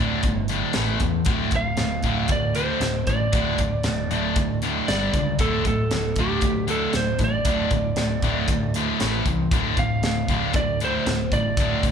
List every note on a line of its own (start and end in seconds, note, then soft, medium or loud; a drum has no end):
0.00 0.17 D1 medium
0.00 0.22 D2 medium
0.00 0.23 A2 medium
0.00 0.23 D3 loud
0.00 0.45 D5 loud
0.23 0.62 G1 medium
0.23 0.47 D2 medium
0.23 0.47 A2 medium
0.23 kick medium
0.23 closed hi-hat medium
0.48 0.74 D2 medium
0.48 0.74 A2 medium
0.48 0.74 D3 medium
0.48 closed hi-hat medium
0.73 0.95 A1 medium
0.73 0.99 A2 medium
0.73 0.99 E3 medium
0.73 1.00 A3 loud
0.73 snare loud
0.73 closed hi-hat medium
1.00 1.20 E2 medium
1.00 1.24 A2 medium
1.00 1.24 E3 medium
1.00 kick medium
1.00 closed hi-hat medium
1.25 1.46 D1 medium
1.25 1.51 D2 medium
1.25 1.51 A2 medium
1.25 1.51 D3 medium
1.25 kick loud
1.25 closed hi-hat medium
1.51 1.72 D1 medium
1.51 1.76 D2 medium
1.51 1.77 A2 medium
1.51 kick medium
1.51 closed hi-hat medium
1.56 2.31 F5 loud
1.77 1.98 D1 medium
1.77 2.01 D2 medium
1.77 2.02 A2 medium
1.77 snare loud
1.77 closed hi-hat medium
2.03 2.24 D1 medium
2.03 2.29 D2 medium
2.03 2.29 A2 loud
2.03 2.29 D3 loud
2.03 kick medium
2.03 closed hi-hat medium
2.28 2.68 D2 medium
2.28 2.54 D2 medium
2.28 2.53 A2 medium
2.28 2.55 D5 medium
2.28 kick loud
2.28 closed hi-hat medium
2.55 2.80 D2 medium
2.55 2.80 A2 medium
2.55 2.81 D3 medium
2.55 3.09 C5 medium
2.55 closed hi-hat medium
2.80 3.00 D1 medium
2.80 3.06 D2 medium
2.80 3.06 A2 medium
2.80 snare loud
2.80 closed hi-hat medium
3.07 3.27 A1 medium
3.07 3.31 D2 medium
3.07 3.32 A2 medium
3.07 4.58 D5 medium
3.07 kick medium
3.07 closed hi-hat medium
3.32 3.53 D1 medium
3.32 3.57 D2 medium
3.32 3.58 A2 medium
3.32 3.58 D3 medium
3.32 kick loud
3.32 closed hi-hat medium
3.58 3.78 D1 medium
3.58 3.83 D2 medium
3.58 3.83 A2 medium
3.58 kick medium
3.58 closed hi-hat medium
3.83 4.04 D1 medium
3.83 4.08 D2 medium
3.83 4.08 A2 medium
3.83 snare loud
3.83 closed hi-hat medium
4.10 4.29 D1 loud
4.10 4.35 D2 medium
4.10 4.35 A2 medium
4.10 4.36 D3 loud
4.10 closed hi-hat medium
4.36 4.75 D2 medium
4.36 4.60 D2 medium
4.36 4.60 A2 medium
4.36 kick loud
4.36 closed hi-hat medium
4.62 4.87 D2 medium
4.62 4.87 A2 medium
4.62 4.87 D3 medium
4.62 closed hi-hat medium
4.88 5.07 G1 medium
4.88 5.13 G2 medium
4.88 5.13 D3 medium
4.88 5.13 G3 medium
4.88 5.36 D5 loud
4.88 snare loud
4.88 closed hi-hat medium
5.14 5.33 C#2 medium
5.14 5.37 G2 medium
5.14 5.38 D3 medium
5.14 kick medium
5.14 closed hi-hat medium
5.39 5.59 D1 medium
5.39 5.64 D2 medium
5.39 5.64 A2 medium
5.39 5.64 D3 medium
5.39 5.64 A4 loud
5.39 kick loud
5.39 closed hi-hat medium
5.65 5.84 D1 medium
5.65 5.89 D2 medium
5.65 5.89 A2 medium
5.65 6.19 A4 loud
5.65 kick medium
5.65 closed hi-hat medium
5.91 6.11 D1 medium
5.91 6.15 D2 medium
5.91 6.15 A2 medium
5.91 snare loud
5.91 closed hi-hat medium
6.16 6.36 D1 medium
6.16 6.42 D2 medium
6.16 6.42 A2 medium
6.16 6.42 D3 medium
6.16 kick medium
6.16 closed hi-hat medium
6.20 6.67 G4 medium
6.41 6.81 D2 medium
6.41 6.66 D2 medium
6.41 6.66 A2 medium
6.41 kick loud
6.41 closed hi-hat medium
6.67 6.92 D2 medium
6.67 6.92 A2 medium
6.67 6.92 D3 medium
6.67 6.96 A4 medium
6.67 closed hi-hat medium
6.93 7.13 D1 medium
6.93 7.17 D2 medium
6.93 7.17 A2 medium
6.93 7.19 C5 medium
6.93 snare loud
6.93 closed hi-hat medium
7.19 7.39 A1 medium
7.19 7.43 D2 medium
7.19 7.43 A2 medium
7.19 kick medium
7.19 closed hi-hat medium
7.24 8.72 D5 medium
7.45 7.65 D1 medium
7.45 7.69 D2 medium
7.45 7.69 A2 medium
7.45 7.70 D3 loud
7.45 kick loud
7.45 closed hi-hat medium
7.71 7.90 D1 medium
7.71 7.94 D2 medium
7.71 7.94 A2 medium
7.71 kick medium
7.71 closed hi-hat medium
7.96 8.16 D1 medium
7.96 8.20 D2 medium
7.96 8.21 A2 medium
7.96 snare loud
7.96 closed hi-hat medium
8.22 8.42 D1 medium
8.22 8.48 D2 medium
8.22 8.48 A2 loud
8.22 8.48 D3 loud
8.22 kick medium
8.22 closed hi-hat medium
8.48 8.87 D2 medium
8.48 8.73 D2 medium
8.48 8.73 A2 medium
8.48 kick loud
8.48 closed hi-hat medium
8.74 8.99 D2 medium
8.74 8.99 A2 medium
8.74 9.00 D3 medium
8.74 closed hi-hat medium
9.00 9.20 A1 medium
9.00 9.25 A2 medium
9.00 9.25 E3 medium
9.00 9.25 A3 medium
9.00 snare loud
9.00 closed hi-hat medium
9.26 9.45 C2 medium
9.26 9.50 A2 medium
9.26 9.50 E3 medium
9.26 kick medium
9.26 closed hi-hat medium
9.51 9.71 D1 loud
9.51 9.76 D2 medium
9.51 9.76 A2 medium
9.51 9.77 D3 loud
9.51 kick loud
9.51 closed hi-hat medium
9.77 9.97 D1 medium
9.77 10.01 D2 medium
9.77 10.01 A2 medium
9.77 10.55 F5 loud
9.77 kick medium
9.77 closed hi-hat medium
10.02 10.22 D1 medium
10.02 10.28 A2 medium
10.02 snare loud
10.02 closed hi-hat medium
10.06 10.28 D2 medium
10.28 10.48 D1 medium
10.28 10.53 D2 medium
10.28 10.53 A2 medium
10.28 10.53 D3 loud
10.28 kick medium
10.28 closed hi-hat medium
10.53 10.93 D2 medium
10.53 10.78 D2 medium
10.53 10.78 A2 medium
10.53 10.79 D5 medium
10.53 kick loud
10.53 closed hi-hat medium
10.80 11.05 D2 medium
10.80 11.05 A2 medium
10.80 11.06 D3 medium
10.80 closed hi-hat medium
10.84 11.35 C5 medium
11.06 11.26 D1 medium
11.06 11.30 D2 medium
11.06 11.30 A2 medium
11.06 snare loud
11.06 closed hi-hat medium
11.32 11.51 A1 medium
11.32 11.56 D2 medium
11.32 11.56 A2 medium
11.32 11.91 D5 medium
11.32 kick medium
11.32 closed hi-hat medium
11.57 11.76 D1 loud
11.57 11.83 D2 medium
11.57 11.83 A2 medium
11.57 kick loud
11.57 closed hi-hat medium
11.61 11.84 D3 medium
11.83 11.91 D1 medium
11.83 11.91 D2 medium
11.83 kick medium
11.83 closed hi-hat medium
11.88 11.91 A2 medium